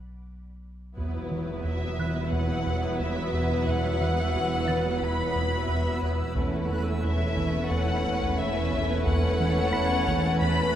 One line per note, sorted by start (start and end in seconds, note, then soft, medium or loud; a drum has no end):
0.00 0.97 B1 medium
0.97 6.33 E1 soft
0.97 6.33 E2 soft
0.97 6.33 E2 medium
0.97 1.18 E2 medium
0.97 6.33 F#3 soft
0.97 6.32 B3 soft
0.97 6.33 B3 soft
0.97 6.33 E4 soft
0.97 6.32 B4 soft
0.97 6.33 B4 soft
0.97 6.32 E5 medium
0.97 6.33 F#5 medium
0.97 taiko soft
1.31 1.51 E3 soft
1.64 1.85 E2 soft
1.64 2.28 E5 soft
1.99 2.19 E3 soft
1.99 3.97 F#6 soft
2.32 2.52 E2 medium
2.32 3.00 F#5 soft
2.66 2.86 E2 soft
3.00 3.20 E2 medium
3.00 3.66 E5 medium
3.34 3.54 E2 soft
3.67 3.88 E2 medium
3.67 5.01 F#5 medium
4.01 4.21 E3 medium
4.35 4.55 E2 soft
4.68 4.88 E3 medium
4.68 6.66 A6 soft
5.01 5.22 E2 medium
5.01 6.36 B5 medium
5.36 5.56 E2 soft
5.68 5.89 E2 medium
6.02 6.23 E2 medium
6.35 10.75 E1 soft
6.35 10.75 E2 medium
6.35 6.57 E2 medium
6.35 10.75 A3 soft
6.35 10.75 C#4 soft
6.35 10.75 E4 soft
6.35 10.75 B4 medium
6.35 10.75 B4 soft
6.35 10.75 C#5 medium
6.35 10.75 A5 medium
6.35 taiko medium
6.70 6.90 E3 soft
7.04 7.24 E2 soft
7.04 7.67 E5 medium
7.37 7.57 E3 medium
7.37 taiko medium
7.71 7.91 E2 medium
7.71 8.38 F#5 medium
8.05 8.25 E2 medium
8.21 taiko medium
8.37 8.59 E2 medium
8.37 9.05 E5 medium
8.72 8.93 E2 medium
8.72 taiko medium
9.06 9.26 E2 medium
9.06 10.38 F#5 medium
9.06 taiko medium
9.40 9.60 E3 soft
9.72 9.94 E2 medium
9.72 10.75 B5 soft
9.72 10.75 B6 medium
10.07 10.28 E3 medium
10.07 taiko medium
10.41 10.62 E2 medium
10.41 10.75 B5 medium